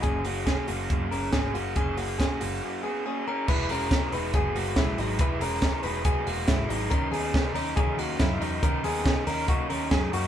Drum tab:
CC |--------|--------|x-------|--------|
HH |xoxoxoxo|xoxo----|-oxoxoxo|xoxoxoxo|
SD |--o---o-|--o-----|--o---o-|--o---o-|
BD |o-o-o-o-|o-o-----|o-o-o-o-|o-o-o-o-|

CC |--------|--------|
HH |xoxoxoxo|xoxoxoxo|
SD |--o---o-|--o---o-|
BD |o-o-o-o-|o-o-o-o-|